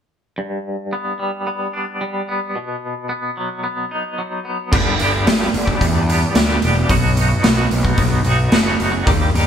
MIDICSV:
0, 0, Header, 1, 5, 480
1, 0, Start_track
1, 0, Key_signature, 1, "major"
1, 0, Tempo, 544465
1, 324, Time_signature, 4, 2, 24, 8
1, 8348, End_track
2, 0, Start_track
2, 0, Title_t, "Clean electric guitar"
2, 0, Program_c, 0, 27
2, 334, Note_on_c, 0, 43, 57
2, 817, Note_on_c, 0, 59, 51
2, 1052, Note_on_c, 0, 55, 56
2, 1291, Note_off_c, 0, 59, 0
2, 1294, Note_on_c, 0, 59, 57
2, 1529, Note_off_c, 0, 43, 0
2, 1529, Note_on_c, 0, 62, 52
2, 1762, Note_off_c, 0, 55, 0
2, 1773, Note_on_c, 0, 55, 55
2, 2011, Note_off_c, 0, 59, 0
2, 2015, Note_on_c, 0, 59, 50
2, 2247, Note_off_c, 0, 62, 0
2, 2249, Note_off_c, 0, 55, 0
2, 2254, Note_on_c, 0, 47, 55
2, 2722, Note_off_c, 0, 59, 0
2, 2726, Note_on_c, 0, 59, 54
2, 2972, Note_on_c, 0, 54, 56
2, 3195, Note_off_c, 0, 59, 0
2, 3206, Note_on_c, 0, 59, 57
2, 3449, Note_off_c, 0, 47, 0
2, 3449, Note_on_c, 0, 63, 53
2, 3679, Note_off_c, 0, 54, 0
2, 3689, Note_on_c, 0, 54, 53
2, 3912, Note_off_c, 0, 59, 0
2, 3922, Note_on_c, 0, 59, 50
2, 4158, Note_on_c, 0, 43, 71
2, 4162, Note_on_c, 0, 50, 73
2, 4163, Note_off_c, 0, 59, 0
2, 4165, Note_off_c, 0, 54, 0
2, 4166, Note_off_c, 0, 63, 0
2, 4168, Note_on_c, 0, 55, 80
2, 4176, Note_on_c, 0, 59, 78
2, 4180, Note_on_c, 0, 62, 80
2, 4185, Note_on_c, 0, 67, 84
2, 4385, Note_off_c, 0, 55, 0
2, 4395, Note_on_c, 0, 55, 66
2, 4403, Note_off_c, 0, 59, 0
2, 4406, Note_off_c, 0, 62, 0
2, 4407, Note_on_c, 0, 59, 63
2, 4416, Note_on_c, 0, 62, 70
2, 4417, Note_off_c, 0, 67, 0
2, 4427, Note_on_c, 0, 67, 77
2, 4503, Note_off_c, 0, 67, 0
2, 4513, Note_off_c, 0, 62, 0
2, 4513, Note_on_c, 0, 67, 61
2, 4524, Note_on_c, 0, 62, 54
2, 4531, Note_off_c, 0, 55, 0
2, 4531, Note_off_c, 0, 59, 0
2, 4534, Note_on_c, 0, 59, 47
2, 4542, Note_on_c, 0, 55, 41
2, 4623, Note_off_c, 0, 43, 0
2, 4629, Note_off_c, 0, 50, 0
2, 4633, Note_on_c, 0, 43, 69
2, 4634, Note_off_c, 0, 55, 0
2, 4640, Note_on_c, 0, 50, 76
2, 4644, Note_off_c, 0, 59, 0
2, 4644, Note_on_c, 0, 55, 76
2, 4645, Note_off_c, 0, 62, 0
2, 4648, Note_on_c, 0, 59, 68
2, 4651, Note_off_c, 0, 67, 0
2, 4655, Note_on_c, 0, 62, 69
2, 4662, Note_on_c, 0, 67, 75
2, 4736, Note_off_c, 0, 67, 0
2, 4745, Note_off_c, 0, 62, 0
2, 4747, Note_on_c, 0, 67, 64
2, 4756, Note_on_c, 0, 62, 54
2, 4764, Note_off_c, 0, 55, 0
2, 4764, Note_off_c, 0, 59, 0
2, 4768, Note_on_c, 0, 59, 56
2, 4774, Note_on_c, 0, 55, 49
2, 4864, Note_off_c, 0, 55, 0
2, 4869, Note_off_c, 0, 62, 0
2, 4869, Note_off_c, 0, 67, 0
2, 4874, Note_off_c, 0, 59, 0
2, 4986, Note_on_c, 0, 67, 61
2, 4998, Note_off_c, 0, 43, 0
2, 4999, Note_on_c, 0, 62, 56
2, 5001, Note_off_c, 0, 50, 0
2, 5008, Note_on_c, 0, 59, 55
2, 5014, Note_on_c, 0, 55, 51
2, 5337, Note_off_c, 0, 55, 0
2, 5347, Note_off_c, 0, 59, 0
2, 5347, Note_on_c, 0, 55, 62
2, 5357, Note_off_c, 0, 62, 0
2, 5357, Note_on_c, 0, 59, 59
2, 5365, Note_off_c, 0, 67, 0
2, 5367, Note_on_c, 0, 62, 63
2, 5376, Note_on_c, 0, 67, 66
2, 5591, Note_on_c, 0, 43, 69
2, 5594, Note_off_c, 0, 55, 0
2, 5599, Note_off_c, 0, 59, 0
2, 5599, Note_on_c, 0, 50, 78
2, 5605, Note_off_c, 0, 62, 0
2, 5605, Note_on_c, 0, 55, 76
2, 5609, Note_off_c, 0, 67, 0
2, 5610, Note_on_c, 0, 59, 79
2, 5616, Note_on_c, 0, 62, 73
2, 5619, Note_on_c, 0, 67, 77
2, 5697, Note_off_c, 0, 67, 0
2, 5708, Note_on_c, 0, 67, 62
2, 5709, Note_off_c, 0, 62, 0
2, 5719, Note_on_c, 0, 62, 57
2, 5720, Note_off_c, 0, 59, 0
2, 5724, Note_off_c, 0, 55, 0
2, 5730, Note_on_c, 0, 59, 49
2, 5735, Note_on_c, 0, 55, 48
2, 5820, Note_off_c, 0, 55, 0
2, 5831, Note_on_c, 0, 55, 56
2, 5832, Note_off_c, 0, 59, 0
2, 5841, Note_off_c, 0, 62, 0
2, 5842, Note_on_c, 0, 59, 61
2, 5851, Note_off_c, 0, 67, 0
2, 5852, Note_on_c, 0, 62, 67
2, 5861, Note_on_c, 0, 67, 65
2, 5942, Note_off_c, 0, 67, 0
2, 5952, Note_off_c, 0, 62, 0
2, 5953, Note_on_c, 0, 67, 66
2, 5957, Note_off_c, 0, 43, 0
2, 5961, Note_off_c, 0, 50, 0
2, 5963, Note_on_c, 0, 62, 62
2, 5964, Note_off_c, 0, 59, 0
2, 5972, Note_off_c, 0, 55, 0
2, 5983, Note_on_c, 0, 55, 55
2, 6063, Note_off_c, 0, 67, 0
2, 6063, Note_on_c, 0, 47, 76
2, 6069, Note_off_c, 0, 62, 0
2, 6072, Note_off_c, 0, 55, 0
2, 6076, Note_on_c, 0, 54, 83
2, 6082, Note_on_c, 0, 59, 88
2, 6087, Note_on_c, 0, 63, 79
2, 6091, Note_on_c, 0, 66, 89
2, 6297, Note_off_c, 0, 54, 0
2, 6308, Note_off_c, 0, 59, 0
2, 6308, Note_on_c, 0, 54, 68
2, 6318, Note_on_c, 0, 59, 74
2, 6325, Note_off_c, 0, 63, 0
2, 6325, Note_off_c, 0, 66, 0
2, 6329, Note_on_c, 0, 63, 69
2, 6335, Note_on_c, 0, 66, 67
2, 6412, Note_off_c, 0, 66, 0
2, 6422, Note_on_c, 0, 66, 60
2, 6438, Note_off_c, 0, 63, 0
2, 6442, Note_off_c, 0, 59, 0
2, 6442, Note_on_c, 0, 63, 50
2, 6453, Note_on_c, 0, 59, 45
2, 6535, Note_off_c, 0, 47, 0
2, 6540, Note_off_c, 0, 54, 0
2, 6546, Note_on_c, 0, 47, 75
2, 6550, Note_off_c, 0, 59, 0
2, 6551, Note_on_c, 0, 54, 80
2, 6560, Note_on_c, 0, 59, 78
2, 6561, Note_off_c, 0, 63, 0
2, 6561, Note_off_c, 0, 66, 0
2, 6565, Note_on_c, 0, 63, 71
2, 6571, Note_on_c, 0, 66, 81
2, 6654, Note_off_c, 0, 66, 0
2, 6664, Note_on_c, 0, 66, 64
2, 6679, Note_off_c, 0, 63, 0
2, 6683, Note_on_c, 0, 63, 50
2, 6686, Note_off_c, 0, 59, 0
2, 6697, Note_on_c, 0, 59, 50
2, 6783, Note_off_c, 0, 54, 0
2, 6784, Note_off_c, 0, 59, 0
2, 6793, Note_off_c, 0, 66, 0
2, 6796, Note_off_c, 0, 63, 0
2, 6914, Note_off_c, 0, 47, 0
2, 6914, Note_on_c, 0, 66, 62
2, 6926, Note_on_c, 0, 63, 62
2, 6942, Note_on_c, 0, 59, 50
2, 7269, Note_off_c, 0, 59, 0
2, 7271, Note_on_c, 0, 54, 59
2, 7279, Note_on_c, 0, 59, 60
2, 7285, Note_off_c, 0, 63, 0
2, 7286, Note_off_c, 0, 66, 0
2, 7288, Note_on_c, 0, 63, 72
2, 7297, Note_on_c, 0, 66, 62
2, 7503, Note_on_c, 0, 47, 72
2, 7504, Note_off_c, 0, 54, 0
2, 7510, Note_off_c, 0, 59, 0
2, 7515, Note_on_c, 0, 54, 78
2, 7521, Note_on_c, 0, 59, 82
2, 7522, Note_off_c, 0, 66, 0
2, 7525, Note_off_c, 0, 63, 0
2, 7528, Note_on_c, 0, 63, 76
2, 7532, Note_on_c, 0, 66, 75
2, 7613, Note_off_c, 0, 66, 0
2, 7624, Note_on_c, 0, 66, 66
2, 7637, Note_off_c, 0, 63, 0
2, 7640, Note_on_c, 0, 63, 55
2, 7642, Note_off_c, 0, 59, 0
2, 7653, Note_on_c, 0, 59, 51
2, 7739, Note_off_c, 0, 54, 0
2, 7750, Note_off_c, 0, 59, 0
2, 7750, Note_on_c, 0, 54, 59
2, 7761, Note_on_c, 0, 59, 67
2, 7764, Note_off_c, 0, 63, 0
2, 7766, Note_off_c, 0, 66, 0
2, 7768, Note_on_c, 0, 63, 66
2, 7776, Note_on_c, 0, 66, 69
2, 7852, Note_off_c, 0, 66, 0
2, 7863, Note_on_c, 0, 66, 68
2, 7873, Note_off_c, 0, 47, 0
2, 7878, Note_off_c, 0, 63, 0
2, 7882, Note_on_c, 0, 63, 60
2, 7883, Note_off_c, 0, 59, 0
2, 7893, Note_on_c, 0, 59, 54
2, 7978, Note_off_c, 0, 66, 0
2, 7980, Note_on_c, 0, 51, 75
2, 7981, Note_off_c, 0, 54, 0
2, 7990, Note_on_c, 0, 55, 83
2, 7993, Note_off_c, 0, 59, 0
2, 7997, Note_off_c, 0, 63, 0
2, 7997, Note_on_c, 0, 58, 78
2, 8001, Note_on_c, 0, 63, 95
2, 8009, Note_on_c, 0, 67, 88
2, 8215, Note_off_c, 0, 55, 0
2, 8222, Note_off_c, 0, 58, 0
2, 8232, Note_on_c, 0, 58, 72
2, 8233, Note_off_c, 0, 63, 0
2, 8237, Note_on_c, 0, 63, 67
2, 8245, Note_off_c, 0, 67, 0
2, 8249, Note_on_c, 0, 67, 75
2, 8335, Note_off_c, 0, 67, 0
2, 8348, Note_off_c, 0, 51, 0
2, 8348, Note_off_c, 0, 58, 0
2, 8348, Note_off_c, 0, 63, 0
2, 8348, End_track
3, 0, Start_track
3, 0, Title_t, "Picked electric bass"
3, 0, Program_c, 1, 34
3, 4167, Note_on_c, 1, 31, 79
3, 4351, Note_off_c, 1, 31, 0
3, 4405, Note_on_c, 1, 31, 76
3, 4590, Note_off_c, 1, 31, 0
3, 4646, Note_on_c, 1, 31, 79
3, 4831, Note_off_c, 1, 31, 0
3, 4883, Note_on_c, 1, 31, 73
3, 5068, Note_off_c, 1, 31, 0
3, 5125, Note_on_c, 1, 40, 81
3, 5495, Note_off_c, 1, 40, 0
3, 5605, Note_on_c, 1, 38, 76
3, 5790, Note_off_c, 1, 38, 0
3, 5844, Note_on_c, 1, 28, 75
3, 6029, Note_off_c, 1, 28, 0
3, 6082, Note_on_c, 1, 35, 83
3, 6453, Note_off_c, 1, 35, 0
3, 6564, Note_on_c, 1, 35, 75
3, 6749, Note_off_c, 1, 35, 0
3, 6797, Note_on_c, 1, 35, 67
3, 6984, Note_off_c, 1, 35, 0
3, 7036, Note_on_c, 1, 35, 80
3, 7224, Note_off_c, 1, 35, 0
3, 7271, Note_on_c, 1, 35, 71
3, 7460, Note_off_c, 1, 35, 0
3, 7523, Note_on_c, 1, 30, 78
3, 7708, Note_off_c, 1, 30, 0
3, 7761, Note_on_c, 1, 30, 74
3, 7947, Note_off_c, 1, 30, 0
3, 7997, Note_on_c, 1, 39, 88
3, 8185, Note_off_c, 1, 39, 0
3, 8241, Note_on_c, 1, 39, 71
3, 8348, Note_off_c, 1, 39, 0
3, 8348, End_track
4, 0, Start_track
4, 0, Title_t, "Muted clean electric guitar strokes"
4, 4875, Note_on_c, 9, 29, 39
4, 4963, Note_off_c, 9, 29, 0
4, 6794, Note_on_c, 9, 29, 41
4, 6882, Note_off_c, 9, 29, 0
4, 8348, End_track
5, 0, Start_track
5, 0, Title_t, "Drums"
5, 4167, Note_on_c, 9, 36, 101
5, 4167, Note_on_c, 9, 49, 76
5, 4255, Note_off_c, 9, 36, 0
5, 4255, Note_off_c, 9, 49, 0
5, 4403, Note_on_c, 9, 46, 47
5, 4491, Note_off_c, 9, 46, 0
5, 4646, Note_on_c, 9, 46, 61
5, 4650, Note_on_c, 9, 38, 96
5, 4734, Note_off_c, 9, 46, 0
5, 4738, Note_off_c, 9, 38, 0
5, 4886, Note_on_c, 9, 46, 49
5, 4974, Note_off_c, 9, 46, 0
5, 5003, Note_on_c, 9, 36, 63
5, 5091, Note_off_c, 9, 36, 0
5, 5123, Note_on_c, 9, 36, 84
5, 5131, Note_on_c, 9, 46, 57
5, 5211, Note_off_c, 9, 36, 0
5, 5219, Note_off_c, 9, 46, 0
5, 5373, Note_on_c, 9, 46, 46
5, 5461, Note_off_c, 9, 46, 0
5, 5600, Note_on_c, 9, 46, 57
5, 5603, Note_on_c, 9, 38, 89
5, 5688, Note_off_c, 9, 46, 0
5, 5692, Note_off_c, 9, 38, 0
5, 5837, Note_on_c, 9, 46, 46
5, 5925, Note_off_c, 9, 46, 0
5, 6078, Note_on_c, 9, 46, 63
5, 6079, Note_on_c, 9, 36, 94
5, 6166, Note_off_c, 9, 46, 0
5, 6167, Note_off_c, 9, 36, 0
5, 6320, Note_on_c, 9, 46, 46
5, 6408, Note_off_c, 9, 46, 0
5, 6557, Note_on_c, 9, 46, 59
5, 6560, Note_on_c, 9, 38, 93
5, 6645, Note_off_c, 9, 46, 0
5, 6649, Note_off_c, 9, 38, 0
5, 6798, Note_on_c, 9, 46, 44
5, 6886, Note_off_c, 9, 46, 0
5, 6917, Note_on_c, 9, 36, 70
5, 7005, Note_off_c, 9, 36, 0
5, 7031, Note_on_c, 9, 46, 56
5, 7034, Note_on_c, 9, 36, 79
5, 7120, Note_off_c, 9, 46, 0
5, 7123, Note_off_c, 9, 36, 0
5, 7269, Note_on_c, 9, 46, 40
5, 7357, Note_off_c, 9, 46, 0
5, 7510, Note_on_c, 9, 46, 51
5, 7513, Note_on_c, 9, 38, 89
5, 7598, Note_off_c, 9, 46, 0
5, 7602, Note_off_c, 9, 38, 0
5, 7757, Note_on_c, 9, 46, 42
5, 7845, Note_off_c, 9, 46, 0
5, 7995, Note_on_c, 9, 46, 61
5, 7996, Note_on_c, 9, 36, 95
5, 8083, Note_off_c, 9, 46, 0
5, 8084, Note_off_c, 9, 36, 0
5, 8246, Note_on_c, 9, 46, 45
5, 8334, Note_off_c, 9, 46, 0
5, 8348, End_track
0, 0, End_of_file